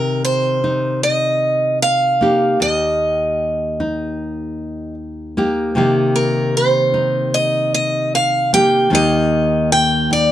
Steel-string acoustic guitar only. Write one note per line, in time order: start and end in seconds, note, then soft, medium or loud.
0.00 0.24 A#4 medium
0.25 1.03 C5 medium
1.03 1.78 D#5 medium
1.82 2.61 F5 medium
2.62 4.94 D#5 medium
6.16 6.56 A#4 medium
6.57 7.37 C5 medium
7.34 7.73 D#5 medium
7.74 8.15 D#5 medium
8.15 8.53 F5 medium
8.54 8.90 G5 medium
8.95 9.72 D#5 medium
9.72 10.12 G5 medium
10.13 10.32 D5 medium